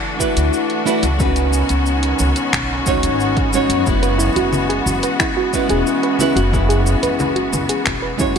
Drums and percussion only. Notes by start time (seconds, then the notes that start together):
0.20 kick, shaker
0.37 closed hi-hat, shaker
0.53 shaker
0.70 closed hi-hat
0.87 shaker
1.03 closed hi-hat, shaker
1.20 kick, shaker
1.36 closed hi-hat, shaker
1.53 shaker
1.69 closed hi-hat, shaker
1.86 shaker
2.03 closed hi-hat
2.19 shaker
2.36 closed hi-hat, shaker
2.53 finger snap, kick, shaker
2.86 kick, shaker
3.03 closed hi-hat, shaker
3.20 shaker
3.37 kick, closed hi-hat
3.53 shaker
3.70 closed hi-hat, shaker
3.86 kick, shaker
4.03 closed hi-hat, shaker
4.20 shaker
4.36 closed hi-hat, shaker
4.52 high conga, shaker
4.70 closed hi-hat
4.86 high conga, shaker
5.03 closed hi-hat, shaker
5.20 finger snap, kick, shaker
5.53 kick, shaker
5.70 closed hi-hat, shaker
5.87 shaker
6.03 closed hi-hat
6.19 high conga, shaker
6.37 closed hi-hat, shaker
6.53 kick, shaker
6.70 closed hi-hat, shaker
6.86 shaker
7.03 closed hi-hat, shaker
7.19 high conga, shaker
7.36 closed hi-hat
7.53 high conga, shaker
7.69 closed hi-hat, shaker
7.86 finger snap, kick, shaker
8.19 kick, shaker